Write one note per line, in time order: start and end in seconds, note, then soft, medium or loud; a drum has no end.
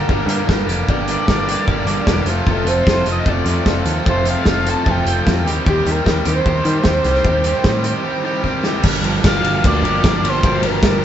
0.00 0.10 D4 medium
0.00 0.10 A#4 medium
0.00 0.65 A#4 medium
0.07 0.23 G1 medium
0.07 0.27 G2 medium
0.07 0.27 D3 medium
0.07 0.28 G3 loud
0.07 0.28 A#3 medium
0.07 0.28 D4 medium
0.07 0.29 G4 loud
0.07 kick loud
0.12 0.30 A#4 medium
0.26 0.41 G2 medium
0.26 0.46 G2 medium
0.26 0.46 D3 medium
0.26 0.48 G3 medium
0.26 0.47 A#3 medium
0.26 0.48 D4 medium
0.26 0.49 G4 loud
0.26 closed hi-hat medium
0.31 0.47 A#4 medium
0.47 0.62 G1 medium
0.47 0.66 G2 medium
0.47 0.66 D3 medium
0.47 0.68 G3 medium
0.47 0.67 A#3 medium
0.47 0.68 D4 medium
0.47 0.68 G4 loud
0.47 0.68 A#4 loud
0.47 kick loud
0.47 snare loud
0.67 0.81 F1 medium
0.67 0.86 G2 medium
0.67 0.87 D3 medium
0.67 0.88 G3 medium
0.67 0.88 A#3 medium
0.67 0.88 D4 medium
0.67 0.89 G4 medium
0.67 0.88 A#4 medium
0.67 closed hi-hat medium
0.87 1.16 G1 medium
0.87 1.07 G2 medium
0.87 1.07 D3 medium
0.87 1.09 G3 medium
0.87 1.08 A#3 medium
0.87 1.09 D4 medium
0.87 1.10 G4 medium
0.87 1.09 A#4 medium
0.87 1.07 D5 medium
0.87 kick loud
1.08 1.27 G2 medium
1.08 1.28 D3 medium
1.08 1.29 G3 medium
1.08 1.28 A#3 medium
1.08 1.29 D4 medium
1.08 1.29 G4 medium
1.08 1.28 A#4 medium
1.08 2.24 D5 loud
1.08 closed hi-hat medium
1.28 1.56 G1 medium
1.28 1.47 G2 medium
1.28 1.47 D3 medium
1.28 1.49 G3 medium
1.28 1.48 A#3 loud
1.28 1.48 D4 loud
1.28 1.50 G4 medium
1.28 1.47 A#4 medium
1.28 kick loud
1.28 snare loud
1.48 1.67 G2 medium
1.48 1.67 D3 medium
1.48 1.68 G3 medium
1.48 1.68 A#3 medium
1.48 1.68 D4 medium
1.48 1.69 G4 medium
1.48 1.68 A#4 medium
1.48 closed hi-hat medium
1.68 1.81 G1 medium
1.68 1.86 G2 medium
1.68 1.86 D3 medium
1.68 1.88 G3 medium
1.68 1.87 A#3 loud
1.68 1.87 D4 medium
1.68 1.88 G4 loud
1.68 1.88 A#4 medium
1.68 kick loud
1.85 2.00 G1 medium
1.85 2.06 G2 medium
1.85 2.06 D3 medium
1.85 2.07 G3 medium
1.85 2.06 A#3 medium
1.85 2.07 D4 medium
1.85 2.08 G4 medium
1.85 closed hi-hat medium
1.90 2.07 A#4 medium
2.07 2.21 E1 medium
2.07 2.25 G2 medium
2.07 2.26 D3 medium
2.07 2.26 G3 medium
2.07 2.26 A#3 medium
2.07 2.26 D4 loud
2.07 2.27 G4 loud
2.07 2.27 A#4 medium
2.07 kick loud
2.07 snare loud
2.25 2.39 F1 medium
2.25 2.45 F2 medium
2.25 2.45 C3 medium
2.25 2.46 F3 medium
2.25 2.47 A3 medium
2.25 2.47 C4 medium
2.25 2.47 F4 loud
2.25 2.47 A4 medium
2.25 closed hi-hat medium
2.46 2.61 F1 medium
2.46 2.65 F2 medium
2.46 2.65 C3 medium
2.46 2.65 F3 medium
2.46 2.66 A3 medium
2.46 2.67 C4 medium
2.46 2.67 F4 medium
2.46 2.67 A4 medium
2.46 kick loud
2.50 2.69 A4 loud
2.65 2.79 F1 medium
2.65 2.85 F2 medium
2.65 2.84 C3 medium
2.65 2.86 F3 medium
2.65 2.86 A3 medium
2.65 2.86 C4 medium
2.65 2.87 F4 medium
2.65 2.87 A4 medium
2.65 2.87 C5 medium
2.65 closed hi-hat medium
2.85 3.01 F1 medium
2.85 3.04 F2 medium
2.85 3.04 C3 medium
2.85 3.05 F3 loud
2.85 3.05 A3 medium
2.85 3.06 C4 loud
2.85 3.05 F4 loud
2.85 3.08 A4 medium
2.85 kick loud
2.85 snare loud
2.90 3.07 C5 medium
3.05 3.20 F1 medium
3.05 3.24 F2 medium
3.05 3.25 C3 medium
3.05 3.25 F3 medium
3.05 3.25 A3 medium
3.05 3.26 C4 medium
3.05 3.26 F4 medium
3.05 closed hi-hat medium
3.09 3.27 A4 medium
3.09 3.28 D#5 medium
3.25 3.40 F1 medium
3.25 3.44 F2 medium
3.25 3.45 C3 loud
3.25 3.45 F3 loud
3.25 3.45 A3 medium
3.25 3.46 C4 medium
3.25 3.46 F4 loud
3.25 3.46 A4 medium
3.25 kick loud
3.30 3.84 D5 medium
3.45 3.59 F2 medium
3.45 3.63 F2 medium
3.45 3.64 C3 medium
3.45 3.64 F3 medium
3.45 3.64 A3 medium
3.45 3.65 C4 medium
3.45 3.65 F4 medium
3.45 3.66 A4 medium
3.45 closed hi-hat medium
3.64 3.80 F1 medium
3.64 3.83 F2 loud
3.64 3.83 C3 medium
3.64 3.84 F3 medium
3.64 3.84 A3 medium
3.64 3.85 C4 loud
3.64 3.85 F4 loud
3.64 3.84 A4 loud
3.64 kick loud
3.64 snare loud
3.84 3.99 D#2 medium
3.84 4.04 F2 medium
3.84 4.04 C3 medium
3.84 4.04 F3 medium
3.84 4.05 A3 medium
3.84 4.06 C4 medium
3.84 4.06 F4 medium
3.84 4.04 A4 medium
3.84 closed hi-hat medium
4.05 4.34 F1 medium
4.05 4.24 F2 medium
4.05 4.25 C3 medium
4.05 4.25 F3 medium
4.05 4.25 A3 medium
4.05 4.26 C4 medium
4.05 4.26 F4 loud
4.05 4.25 A4 medium
4.05 kick loud
4.09 4.26 C5 medium
4.25 4.44 F2 medium
4.25 4.45 C3 medium
4.25 4.45 F3 medium
4.25 4.45 A3 medium
4.25 4.46 C4 medium
4.25 4.46 F4 medium
4.25 4.44 A4 medium
4.25 closed hi-hat medium
4.30 4.47 F5 medium
4.45 4.74 F1 medium
4.45 4.64 F2 medium
4.45 4.65 C3 medium
4.45 4.66 F3 medium
4.45 4.66 A3 medium
4.45 4.66 C4 medium
4.45 4.67 F4 loud
4.45 4.66 A4 medium
4.45 kick loud
4.45 snare loud
4.51 4.70 F5 loud
4.66 4.84 F2 medium
4.66 4.85 C3 medium
4.66 4.85 F3 medium
4.66 4.85 A3 medium
4.66 4.86 C4 medium
4.66 4.86 F4 medium
4.66 4.86 A4 loud
4.66 4.92 A5 medium
4.66 closed hi-hat medium
4.85 5.00 F1 medium
4.85 5.04 F2 medium
4.85 5.05 C3 medium
4.85 5.05 F3 loud
4.85 5.05 A3 loud
4.85 5.06 C4 loud
4.85 5.06 F4 loud
4.85 5.06 A4 medium
4.85 kick loud
4.90 5.48 G5 loud
5.05 5.19 F1 medium
5.05 5.24 F2 medium
5.05 5.25 C3 medium
5.05 5.25 F3 medium
5.05 5.26 A3 medium
5.05 5.26 C4 medium
5.05 5.26 F4 medium
5.05 5.27 A4 medium
5.05 closed hi-hat medium
5.25 5.44 F2 medium
5.25 5.45 F2 medium
5.25 5.44 C3 medium
5.25 5.44 F3 medium
5.25 5.45 A3 medium
5.25 5.46 C4 loud
5.25 5.45 F4 medium
5.25 5.45 A4 loud
5.25 kick loud
5.25 snare loud
5.45 5.59 D#2 medium
5.45 5.65 D#3 medium
5.45 5.65 G3 medium
5.45 5.65 C4 medium
5.45 5.66 G4 loud
5.45 snare soft
5.45 closed hi-hat medium
5.65 5.80 D#2 loud
5.65 5.85 D#3 medium
5.65 5.86 G3 medium
5.65 5.87 C4 loud
5.65 5.87 G4 medium
5.65 kick loud
5.69 5.92 G4 loud
5.85 5.99 D#2 medium
5.85 6.05 D#3 medium
5.85 6.06 G3 medium
5.85 6.06 C4 medium
5.85 6.06 G4 medium
5.85 closed hi-hat medium
5.91 6.08 A#4 medium
6.06 6.20 D#2 medium
6.06 6.24 D#3 medium
6.06 6.25 G3 loud
6.06 6.25 C4 loud
6.06 6.26 G4 medium
6.06 6.26 A#4 medium
6.06 kick loud
6.06 snare loud
6.25 6.39 D#2 medium
6.25 6.43 D#3 medium
6.25 6.45 G3 medium
6.25 6.45 C4 medium
6.25 6.45 G4 medium
6.25 8.41 C5 loud
6.25 closed hi-hat medium
6.45 6.59 D#2 medium
6.45 6.63 D#3 medium
6.45 6.65 G3 medium
6.45 6.64 C4 medium
6.45 6.65 G4 loud
6.45 kick loud
6.64 6.83 D#3 medium
6.64 6.79 D#3 medium
6.64 6.84 G3 medium
6.64 6.83 C4 medium
6.64 6.85 G4 medium
6.64 closed hi-hat medium
6.84 6.99 D#2 medium
6.84 7.03 D#3 medium
6.84 7.04 G3 medium
6.84 7.04 C4 medium
6.84 7.05 G4 loud
6.84 kick medium
6.84 snare loud
7.04 7.18 C2 medium
7.04 7.23 D#3 medium
7.04 7.24 G3 medium
7.04 7.24 C4 medium
7.04 7.25 G4 medium
7.04 snare soft
7.04 closed hi-hat medium
7.14 snare soft
7.24 7.52 D#2 medium
7.24 7.44 D#3 medium
7.24 7.44 G3 medium
7.24 7.45 C4 medium
7.24 7.45 G4 medium
7.24 kick loud
7.44 7.64 D#3 medium
7.44 7.64 G3 medium
7.44 7.65 C4 medium
7.44 7.65 G4 medium
7.44 closed hi-hat medium
7.64 7.92 A2 medium
7.64 7.83 D#3 medium
7.64 7.83 G3 medium
7.64 7.84 C4 medium
7.64 7.84 G4 loud
7.64 kick loud
7.64 snare loud
7.84 8.02 D#3 medium
7.84 8.02 G3 medium
7.84 8.03 C4 medium
7.84 8.04 G4 medium
7.84 closed hi-hat medium
8.04 8.22 D#3 medium
8.04 8.23 G3 medium
8.04 8.23 C4 loud
8.04 8.24 G4 loud
8.23 8.42 D#3 medium
8.23 8.42 G3 medium
8.23 8.43 C4 medium
8.23 8.43 G4 medium
8.43 8.62 D#3 medium
8.43 8.62 G3 medium
8.43 8.63 C4 loud
8.43 8.63 G4 loud
8.43 kick medium
8.63 8.82 D#3 medium
8.63 8.81 G3 medium
8.63 8.83 C4 medium
8.63 8.83 G4 medium
8.63 snare medium
8.83 9.00 G1 loud
8.83 9.83 G2 medium
8.83 9.23 G3 medium
8.83 9.05 D4 medium
8.83 9.04 G4 medium
8.83 9.03 A#4 medium
8.83 kick loud
8.83 crash loud
9.02 9.19 G1 loud
9.02 9.64 F3 medium
9.02 9.24 D4 medium
9.02 9.24 G4 medium
9.02 9.25 A#4 medium
9.02 ride medium
9.23 9.40 G1 medium
9.23 10.02 G3 medium
9.23 9.85 D4 medium
9.23 9.82 G4 medium
9.23 9.82 A#4 medium
9.23 9.62 F5 loud
9.23 kick loud
9.23 snare loud
9.23 ride loud
9.43 9.60 G1 loud
9.43 9.83 A#3 medium
9.43 ride medium
9.64 9.81 D2 medium
9.64 10.24 F3 medium
9.64 10.30 D5 loud
9.64 kick loud
9.64 ride loud
9.82 9.99 G1 medium
9.82 10.83 A#3 medium
9.82 10.03 D4 medium
9.82 10.03 G4 medium
9.82 10.04 A#4 medium
9.82 ride medium
10.03 10.20 G1 loud
10.03 10.42 G3 loud
10.03 10.24 D4 loud
10.03 10.23 G4 loud
10.03 10.21 A#4 loud
10.03 kick loud
10.03 snare loud
10.03 ride loud
10.22 10.39 G1 medium
10.22 10.64 F3 medium
10.22 10.43 D4 medium
10.22 10.44 G4 medium
10.22 10.44 A#4 medium
10.22 ride medium
10.28 10.68 C5 loud
10.43 10.59 G1 loud
10.43 11.05 G2 medium
10.43 10.80 G3 medium
10.43 10.65 D4 medium
10.43 10.63 G4 loud
10.43 10.62 A#4 medium
10.43 kick loud
10.43 ride loud
10.62 10.79 G1 medium
10.62 11.05 F3 medium
10.62 10.83 D4 medium
10.62 10.82 G4 medium
10.62 10.82 A#4 medium
10.62 ride medium
10.66 11.05 A#4 medium
10.82 11.05 G1 loud
10.82 11.05 G3 medium
10.82 11.05 D4 medium
10.82 11.05 G4 medium
10.82 11.05 A#4 medium
10.82 kick loud
10.82 snare loud
10.82 ride loud